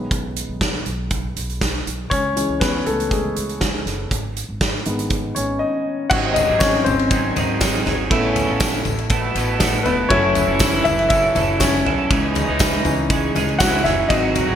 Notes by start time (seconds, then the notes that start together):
Already playing: D#3 G#3 B3
0.11 B1, kick, closed hi-hat
0.36 closed hi-hat
0.49 B1
0.61 kick, snare, closed hi-hat
0.86 B1, closed hi-hat
1.10 kick, closed hi-hat
1.36 B1, closed hi-hat
1.49 closed hi-hat
1.61 kick, snare, closed hi-hat
1.87 B1, closed hi-hat
2.10 C#2 C#4 C#5, kick, closed hi-hat
2.36 E3 G#3 C#4, closed hi-hat
2.49 C#2
2.60 B3 B4, kick, snare, closed hi-hat
2.86 C#2 A3 A4, closed hi-hat
3.00 closed hi-hat
3.11 G#3 G#4, kick, closed hi-hat
3.36 C#2, closed hi-hat
3.49 closed hi-hat
3.61 kick, snare, closed hi-hat
3.86 F#1, snare, closed hi-hat
4.11 G#1, kick, closed hi-hat
4.37 closed hi-hat
4.49 G#1
4.61 kick, snare, closed hi-hat
4.85 G#1 D#3 G#3 B3, closed hi-hat
4.99 closed hi-hat
5.10 kick, closed hi-hat
5.35 G#1 C#4 C#5, closed hi-hat
5.59 D#4 D#5
6.10 G#1 G#2 C3 D#3 F#3 C4 D#4 F#4 G#4 F#5, kick, crash, tambourine
6.34 D#4 D#5, floor tom, ride, tambourine
6.47 G#1 F#3 C4 D#4 G#4
6.59 C#4 C#5, kick, snare, ride, tambourine
6.84 G#1 C4 C5, floor tom, ride, tambourine
6.99 ride
7.10 D#3 F#3 C4 D#4 G#4, kick, ride, tambourine
7.35 G#1 F#3 C4 D#4 G#4, floor tom, ride, tambourine
7.60 F#3 C4 D#4 G#4, kick, snare, ride, tambourine
7.85 G#1 F#3 C4 D#4 G#4, snare, floor tom, ride, tambourine
8.10 A1 C#3 A3 B3 C#4 E4 A4, kick, ride
8.36 floor tom, ride, tambourine
8.47 A1 B3 E4 A4
8.60 kick, snare, ride, tambourine
8.85 A1, floor tom, ride, tambourine
8.98 ride
9.10 B2 A3 B3 E4 A4, kick, ride, tambourine
9.35 A1 A3 B3 E4 A4, ride, tambourine
9.60 A3 B3 E4 A4, kick, snare, ride, tambourine
9.83 E1 A3 B3 E4 A4 B4, floor tom, ride, tambourine
10.09 F#1 E3 F#3 A3 C#4 E4 A4 C#5, kick, ride
10.35 floor tom, ride, tambourine
10.47 F#1 C#4 E4 A4
10.59 kick, snare, ride, tambourine
10.84 F#1 E4 E5, floor tom, ride, tambourine
10.99 ride
11.09 F#3 C#4 E4 A4 E5, kick, ride, tambourine
11.35 F#1 F#3 C#4 E4 A4, floor tom, ride, tambourine
11.60 F#3 C#4 E4 A4 C#5, kick, snare, ride, tambourine
11.85 B1 F#3 C#4 E4 A4, floor tom, ride
12.10 C#2 C#3 E3 G#3 C#4 D#4 G#4, kick, ride, tambourine
12.35 floor tom, ride, tambourine
12.48 C#2 G#3 C#4 D#4 G#4
12.59 kick, snare, ride, tambourine
12.85 C#2 E3 C#4 D#4, floor tom, ride, tambourine
13.10 G#3 C#4 D#4 G#4, kick, ride, tambourine
13.35 C#2 G#3 C#4 D#4 G#4, floor tom, ride, tambourine
13.49 ride
13.59 E3 G#3 C#4 D#4 E4 F#4 G#4 F#5, kick, snare, ride, tambourine
13.84 F#1 G#3 C#4 D#4 E4 G#4 E5, snare, floor tom, ride, tambourine
14.09 G#1 G#2 D#3 F#3 C4 D#4 F#4 G#4 D#5, kick, ride, tambourine
14.35 floor tom, ride, tambourine
14.47 G#1 F#3 C4 F#4 G#4